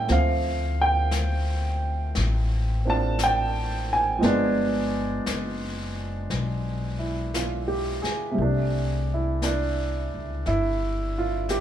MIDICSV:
0, 0, Header, 1, 5, 480
1, 0, Start_track
1, 0, Key_signature, 0, "major"
1, 0, Tempo, 1038062
1, 34, Time_signature, 4, 2, 24, 8
1, 5366, End_track
2, 0, Start_track
2, 0, Title_t, "Upright piano"
2, 0, Program_c, 0, 0
2, 0, Control_c, 0, 64, 127
2, 0, Note_on_c, 0, 64, 62
2, 41, Control_c, 0, 64, 0
2, 42, Note_on_c, 0, 53, 52
2, 44, Note_on_c, 0, 57, 48
2, 47, Note_on_c, 0, 60, 48
2, 50, Note_off_c, 0, 64, 0
2, 56, Note_on_c, 0, 77, 78
2, 110, Control_c, 0, 64, 127
2, 366, Note_off_c, 0, 77, 0
2, 377, Note_on_c, 0, 79, 80
2, 980, Note_off_c, 0, 79, 0
2, 1312, Note_off_c, 0, 60, 0
2, 1319, Note_on_c, 0, 60, 42
2, 1328, Note_on_c, 0, 62, 40
2, 1336, Note_on_c, 0, 65, 46
2, 1340, Note_on_c, 0, 81, 89
2, 1476, Note_off_c, 0, 81, 0
2, 1496, Note_on_c, 0, 79, 78
2, 1804, Note_off_c, 0, 79, 0
2, 1817, Note_on_c, 0, 80, 74
2, 1929, Note_off_c, 0, 53, 0
2, 1936, Note_on_c, 0, 53, 64
2, 1948, Note_off_c, 0, 60, 0
2, 1948, Note_on_c, 0, 56, 59
2, 1953, Note_off_c, 0, 62, 0
2, 1954, Note_off_c, 0, 57, 0
2, 1956, Control_c, 0, 64, 0
2, 1956, Note_on_c, 0, 59, 59
2, 1957, Note_off_c, 0, 65, 0
2, 1963, Note_on_c, 0, 62, 70
2, 2036, Control_c, 0, 64, 127
2, 2419, Note_off_c, 0, 80, 0
2, 3233, Note_on_c, 0, 64, 42
2, 3396, Note_on_c, 0, 65, 52
2, 3484, Note_off_c, 0, 64, 0
2, 3550, Note_on_c, 0, 67, 55
2, 3706, Note_off_c, 0, 65, 0
2, 3709, Note_on_c, 0, 68, 54
2, 3803, Note_off_c, 0, 67, 0
2, 3844, Note_on_c, 0, 48, 48
2, 3857, Note_on_c, 0, 55, 44
2, 3865, Note_off_c, 0, 53, 0
2, 3871, Note_off_c, 0, 56, 0
2, 3875, Note_off_c, 0, 59, 0
2, 3877, Control_c, 0, 64, 0
2, 3878, Note_off_c, 0, 62, 0
2, 3878, Note_on_c, 0, 57, 41
2, 3892, Note_on_c, 0, 62, 53
2, 3953, Control_c, 0, 64, 127
2, 3962, Note_off_c, 0, 68, 0
2, 4226, Note_on_c, 0, 64, 61
2, 4355, Note_off_c, 0, 62, 0
2, 4362, Note_on_c, 0, 62, 60
2, 4369, Note_off_c, 0, 64, 0
2, 4820, Note_off_c, 0, 62, 0
2, 4843, Note_on_c, 0, 64, 79
2, 5151, Note_off_c, 0, 64, 0
2, 5172, Note_on_c, 0, 65, 68
2, 5320, Note_on_c, 0, 67, 73
2, 5322, Note_off_c, 0, 65, 0
2, 5366, Note_off_c, 0, 48, 0
2, 5366, Note_off_c, 0, 55, 0
2, 5366, Note_off_c, 0, 57, 0
2, 5366, Note_off_c, 0, 67, 0
2, 5366, End_track
3, 0, Start_track
3, 0, Title_t, "Upright bass"
3, 0, Program_c, 1, 32
3, 44, Note_on_c, 1, 38, 80
3, 978, Note_off_c, 1, 38, 0
3, 1004, Note_on_c, 1, 33, 91
3, 1937, Note_off_c, 1, 33, 0
3, 1955, Note_on_c, 1, 31, 82
3, 2413, Note_off_c, 1, 31, 0
3, 2437, Note_on_c, 1, 30, 68
3, 2895, Note_off_c, 1, 30, 0
3, 2915, Note_on_c, 1, 35, 89
3, 3707, Note_off_c, 1, 35, 0
3, 3875, Note_on_c, 1, 36, 69
3, 4667, Note_off_c, 1, 36, 0
3, 4692, Note_on_c, 1, 37, 56
3, 4827, Note_off_c, 1, 37, 0
3, 4837, Note_on_c, 1, 31, 69
3, 5366, Note_off_c, 1, 31, 0
3, 5366, End_track
4, 0, Start_track
4, 0, Title_t, "Muted upright bass strokes"
4, 3726, Note_on_c, 9, 29, 39
4, 3772, Note_off_c, 9, 29, 0
4, 5366, End_track
5, 0, Start_track
5, 0, Title_t, "Drums"
5, 39, Note_on_c, 9, 25, 35
5, 39, Note_on_c, 9, 38, 33
5, 85, Note_off_c, 9, 38, 0
5, 515, Note_off_c, 9, 25, 0
5, 515, Note_on_c, 9, 25, 39
5, 515, Note_on_c, 9, 38, 49
5, 515, Note_on_c, 9, 44, 57
5, 561, Note_off_c, 9, 38, 0
5, 561, Note_off_c, 9, 44, 0
5, 994, Note_off_c, 9, 25, 0
5, 994, Note_on_c, 9, 25, 43
5, 994, Note_on_c, 9, 38, 36
5, 1040, Note_off_c, 9, 38, 0
5, 1474, Note_off_c, 9, 25, 0
5, 1474, Note_on_c, 9, 25, 37
5, 1474, Note_on_c, 9, 38, 50
5, 1474, Note_on_c, 9, 44, 59
5, 1520, Note_off_c, 9, 38, 0
5, 1520, Note_off_c, 9, 44, 0
5, 1954, Note_off_c, 9, 25, 0
5, 1954, Note_on_c, 9, 25, 41
5, 1954, Note_on_c, 9, 38, 33
5, 2000, Note_off_c, 9, 38, 0
5, 2434, Note_off_c, 9, 25, 0
5, 2434, Note_on_c, 9, 25, 39
5, 2434, Note_on_c, 9, 38, 55
5, 2434, Note_on_c, 9, 44, 49
5, 2480, Note_off_c, 9, 38, 0
5, 2480, Note_off_c, 9, 44, 0
5, 2914, Note_off_c, 9, 25, 0
5, 2914, Note_on_c, 9, 25, 44
5, 2914, Note_on_c, 9, 38, 33
5, 2960, Note_off_c, 9, 38, 0
5, 3395, Note_off_c, 9, 25, 0
5, 3395, Note_on_c, 9, 25, 40
5, 3395, Note_on_c, 9, 38, 48
5, 3395, Note_on_c, 9, 44, 57
5, 3441, Note_off_c, 9, 38, 0
5, 3441, Note_off_c, 9, 44, 0
5, 3717, Note_on_c, 9, 38, 26
5, 3763, Note_off_c, 9, 38, 0
5, 3879, Note_off_c, 9, 25, 0
5, 3879, Note_on_c, 9, 25, 30
5, 4356, Note_off_c, 9, 25, 0
5, 4356, Note_on_c, 9, 25, 34
5, 4356, Note_on_c, 9, 38, 37
5, 4356, Note_on_c, 9, 44, 54
5, 4402, Note_off_c, 9, 38, 0
5, 4402, Note_off_c, 9, 44, 0
5, 4835, Note_off_c, 9, 25, 0
5, 4835, Note_on_c, 9, 25, 38
5, 4835, Note_on_c, 9, 38, 25
5, 4882, Note_off_c, 9, 38, 0
5, 5312, Note_off_c, 9, 25, 0
5, 5312, Note_on_c, 9, 25, 29
5, 5312, Note_on_c, 9, 38, 38
5, 5312, Note_on_c, 9, 44, 40
5, 5359, Note_off_c, 9, 38, 0
5, 5359, Note_off_c, 9, 44, 0
5, 5366, Note_off_c, 9, 25, 0
5, 5366, End_track
0, 0, End_of_file